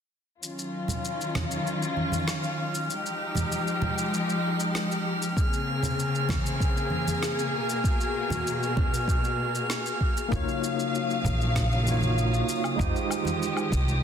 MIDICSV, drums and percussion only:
0, 0, Header, 1, 2, 480
1, 0, Start_track
1, 0, Tempo, 618557
1, 328, Time_signature, 4, 2, 24, 8
1, 10889, End_track
2, 0, Start_track
2, 0, Title_t, "Drums"
2, 335, Note_on_c, 9, 82, 47
2, 413, Note_off_c, 9, 82, 0
2, 456, Note_on_c, 9, 82, 28
2, 534, Note_off_c, 9, 82, 0
2, 684, Note_on_c, 9, 64, 64
2, 695, Note_on_c, 9, 82, 54
2, 762, Note_off_c, 9, 64, 0
2, 773, Note_off_c, 9, 82, 0
2, 814, Note_on_c, 9, 82, 43
2, 891, Note_off_c, 9, 82, 0
2, 938, Note_on_c, 9, 82, 29
2, 1016, Note_off_c, 9, 82, 0
2, 1046, Note_on_c, 9, 63, 76
2, 1049, Note_on_c, 9, 38, 68
2, 1051, Note_on_c, 9, 64, 91
2, 1124, Note_off_c, 9, 63, 0
2, 1127, Note_off_c, 9, 38, 0
2, 1128, Note_off_c, 9, 64, 0
2, 1175, Note_on_c, 9, 82, 55
2, 1253, Note_off_c, 9, 82, 0
2, 1296, Note_on_c, 9, 82, 46
2, 1374, Note_off_c, 9, 82, 0
2, 1417, Note_on_c, 9, 82, 29
2, 1494, Note_off_c, 9, 82, 0
2, 1527, Note_on_c, 9, 63, 53
2, 1605, Note_off_c, 9, 63, 0
2, 1644, Note_on_c, 9, 63, 74
2, 1656, Note_on_c, 9, 82, 59
2, 1721, Note_off_c, 9, 63, 0
2, 1733, Note_off_c, 9, 82, 0
2, 1766, Note_on_c, 9, 38, 69
2, 1773, Note_on_c, 9, 82, 47
2, 1844, Note_off_c, 9, 38, 0
2, 1850, Note_off_c, 9, 82, 0
2, 1891, Note_on_c, 9, 82, 27
2, 1968, Note_off_c, 9, 82, 0
2, 2132, Note_on_c, 9, 82, 60
2, 2210, Note_off_c, 9, 82, 0
2, 2254, Note_on_c, 9, 82, 51
2, 2332, Note_off_c, 9, 82, 0
2, 2375, Note_on_c, 9, 82, 30
2, 2452, Note_off_c, 9, 82, 0
2, 2598, Note_on_c, 9, 63, 66
2, 2604, Note_on_c, 9, 64, 65
2, 2614, Note_on_c, 9, 82, 57
2, 2676, Note_off_c, 9, 63, 0
2, 2682, Note_off_c, 9, 64, 0
2, 2692, Note_off_c, 9, 82, 0
2, 2732, Note_on_c, 9, 82, 49
2, 2810, Note_off_c, 9, 82, 0
2, 2851, Note_on_c, 9, 82, 29
2, 2929, Note_off_c, 9, 82, 0
2, 2962, Note_on_c, 9, 64, 88
2, 3040, Note_off_c, 9, 64, 0
2, 3092, Note_on_c, 9, 82, 57
2, 3169, Note_off_c, 9, 82, 0
2, 3213, Note_on_c, 9, 82, 50
2, 3291, Note_off_c, 9, 82, 0
2, 3333, Note_on_c, 9, 82, 32
2, 3411, Note_off_c, 9, 82, 0
2, 3571, Note_on_c, 9, 82, 60
2, 3649, Note_off_c, 9, 82, 0
2, 3686, Note_on_c, 9, 38, 73
2, 3692, Note_on_c, 9, 82, 48
2, 3763, Note_off_c, 9, 38, 0
2, 3770, Note_off_c, 9, 82, 0
2, 3813, Note_on_c, 9, 82, 30
2, 3891, Note_off_c, 9, 82, 0
2, 4054, Note_on_c, 9, 82, 60
2, 4132, Note_off_c, 9, 82, 0
2, 4164, Note_on_c, 9, 36, 118
2, 4172, Note_on_c, 9, 82, 52
2, 4242, Note_off_c, 9, 36, 0
2, 4250, Note_off_c, 9, 82, 0
2, 4293, Note_on_c, 9, 82, 32
2, 4370, Note_off_c, 9, 82, 0
2, 4521, Note_on_c, 9, 64, 73
2, 4532, Note_on_c, 9, 82, 61
2, 4599, Note_off_c, 9, 64, 0
2, 4610, Note_off_c, 9, 82, 0
2, 4653, Note_on_c, 9, 82, 52
2, 4730, Note_off_c, 9, 82, 0
2, 4774, Note_on_c, 9, 82, 30
2, 4852, Note_off_c, 9, 82, 0
2, 4879, Note_on_c, 9, 64, 80
2, 4882, Note_on_c, 9, 63, 81
2, 4884, Note_on_c, 9, 36, 98
2, 4889, Note_on_c, 9, 38, 67
2, 4956, Note_off_c, 9, 64, 0
2, 4960, Note_off_c, 9, 63, 0
2, 4962, Note_off_c, 9, 36, 0
2, 4967, Note_off_c, 9, 38, 0
2, 5015, Note_on_c, 9, 82, 60
2, 5092, Note_off_c, 9, 82, 0
2, 5124, Note_on_c, 9, 36, 116
2, 5134, Note_on_c, 9, 82, 53
2, 5202, Note_off_c, 9, 36, 0
2, 5212, Note_off_c, 9, 82, 0
2, 5255, Note_on_c, 9, 82, 32
2, 5332, Note_off_c, 9, 82, 0
2, 5356, Note_on_c, 9, 63, 65
2, 5434, Note_off_c, 9, 63, 0
2, 5488, Note_on_c, 9, 63, 78
2, 5494, Note_on_c, 9, 82, 64
2, 5566, Note_off_c, 9, 63, 0
2, 5572, Note_off_c, 9, 82, 0
2, 5607, Note_on_c, 9, 38, 73
2, 5614, Note_on_c, 9, 82, 55
2, 5685, Note_off_c, 9, 38, 0
2, 5691, Note_off_c, 9, 82, 0
2, 5735, Note_on_c, 9, 82, 31
2, 5813, Note_off_c, 9, 82, 0
2, 5974, Note_on_c, 9, 82, 69
2, 6051, Note_off_c, 9, 82, 0
2, 6084, Note_on_c, 9, 36, 110
2, 6092, Note_on_c, 9, 82, 52
2, 6162, Note_off_c, 9, 36, 0
2, 6169, Note_off_c, 9, 82, 0
2, 6213, Note_on_c, 9, 82, 32
2, 6290, Note_off_c, 9, 82, 0
2, 6442, Note_on_c, 9, 63, 69
2, 6444, Note_on_c, 9, 64, 76
2, 6456, Note_on_c, 9, 82, 61
2, 6519, Note_off_c, 9, 63, 0
2, 6521, Note_off_c, 9, 64, 0
2, 6534, Note_off_c, 9, 82, 0
2, 6575, Note_on_c, 9, 82, 52
2, 6652, Note_off_c, 9, 82, 0
2, 6697, Note_on_c, 9, 82, 31
2, 6775, Note_off_c, 9, 82, 0
2, 6804, Note_on_c, 9, 36, 96
2, 6806, Note_on_c, 9, 64, 86
2, 6882, Note_off_c, 9, 36, 0
2, 6883, Note_off_c, 9, 64, 0
2, 6939, Note_on_c, 9, 82, 65
2, 7017, Note_off_c, 9, 82, 0
2, 7044, Note_on_c, 9, 36, 111
2, 7055, Note_on_c, 9, 82, 52
2, 7122, Note_off_c, 9, 36, 0
2, 7132, Note_off_c, 9, 82, 0
2, 7173, Note_on_c, 9, 82, 32
2, 7251, Note_off_c, 9, 82, 0
2, 7411, Note_on_c, 9, 82, 62
2, 7489, Note_off_c, 9, 82, 0
2, 7525, Note_on_c, 9, 38, 65
2, 7532, Note_on_c, 9, 82, 50
2, 7603, Note_off_c, 9, 38, 0
2, 7610, Note_off_c, 9, 82, 0
2, 7652, Note_on_c, 9, 82, 33
2, 7730, Note_off_c, 9, 82, 0
2, 7765, Note_on_c, 9, 36, 54
2, 7843, Note_off_c, 9, 36, 0
2, 7893, Note_on_c, 9, 82, 67
2, 7971, Note_off_c, 9, 82, 0
2, 8006, Note_on_c, 9, 36, 106
2, 8015, Note_on_c, 9, 82, 41
2, 8084, Note_off_c, 9, 36, 0
2, 8092, Note_off_c, 9, 82, 0
2, 8136, Note_on_c, 9, 82, 20
2, 8213, Note_off_c, 9, 82, 0
2, 8256, Note_on_c, 9, 82, 74
2, 8333, Note_off_c, 9, 82, 0
2, 8376, Note_on_c, 9, 82, 31
2, 8454, Note_off_c, 9, 82, 0
2, 8498, Note_on_c, 9, 82, 38
2, 8575, Note_off_c, 9, 82, 0
2, 8618, Note_on_c, 9, 82, 21
2, 8695, Note_off_c, 9, 82, 0
2, 8724, Note_on_c, 9, 63, 82
2, 8726, Note_on_c, 9, 36, 99
2, 8735, Note_on_c, 9, 82, 69
2, 8802, Note_off_c, 9, 63, 0
2, 8804, Note_off_c, 9, 36, 0
2, 8813, Note_off_c, 9, 82, 0
2, 8856, Note_on_c, 9, 82, 32
2, 8934, Note_off_c, 9, 82, 0
2, 8966, Note_on_c, 9, 36, 103
2, 8970, Note_on_c, 9, 38, 79
2, 8977, Note_on_c, 9, 82, 40
2, 9043, Note_off_c, 9, 36, 0
2, 9048, Note_off_c, 9, 38, 0
2, 9054, Note_off_c, 9, 82, 0
2, 9095, Note_on_c, 9, 82, 22
2, 9173, Note_off_c, 9, 82, 0
2, 9206, Note_on_c, 9, 63, 60
2, 9214, Note_on_c, 9, 82, 72
2, 9284, Note_off_c, 9, 63, 0
2, 9291, Note_off_c, 9, 82, 0
2, 9318, Note_on_c, 9, 63, 75
2, 9334, Note_on_c, 9, 82, 30
2, 9396, Note_off_c, 9, 63, 0
2, 9412, Note_off_c, 9, 82, 0
2, 9454, Note_on_c, 9, 82, 42
2, 9532, Note_off_c, 9, 82, 0
2, 9574, Note_on_c, 9, 82, 20
2, 9652, Note_off_c, 9, 82, 0
2, 9693, Note_on_c, 9, 82, 77
2, 9771, Note_off_c, 9, 82, 0
2, 9809, Note_on_c, 9, 77, 56
2, 9816, Note_on_c, 9, 82, 34
2, 9887, Note_off_c, 9, 77, 0
2, 9894, Note_off_c, 9, 82, 0
2, 9926, Note_on_c, 9, 36, 113
2, 9938, Note_on_c, 9, 82, 42
2, 10003, Note_off_c, 9, 36, 0
2, 10016, Note_off_c, 9, 82, 0
2, 10056, Note_on_c, 9, 82, 22
2, 10133, Note_off_c, 9, 82, 0
2, 10170, Note_on_c, 9, 77, 53
2, 10177, Note_on_c, 9, 82, 77
2, 10248, Note_off_c, 9, 77, 0
2, 10255, Note_off_c, 9, 82, 0
2, 10282, Note_on_c, 9, 63, 73
2, 10297, Note_on_c, 9, 82, 33
2, 10359, Note_off_c, 9, 63, 0
2, 10375, Note_off_c, 9, 82, 0
2, 10418, Note_on_c, 9, 82, 41
2, 10496, Note_off_c, 9, 82, 0
2, 10528, Note_on_c, 9, 77, 53
2, 10534, Note_on_c, 9, 82, 21
2, 10605, Note_off_c, 9, 77, 0
2, 10612, Note_off_c, 9, 82, 0
2, 10646, Note_on_c, 9, 36, 96
2, 10654, Note_on_c, 9, 82, 71
2, 10723, Note_off_c, 9, 36, 0
2, 10731, Note_off_c, 9, 82, 0
2, 10774, Note_on_c, 9, 82, 32
2, 10852, Note_off_c, 9, 82, 0
2, 10889, End_track
0, 0, End_of_file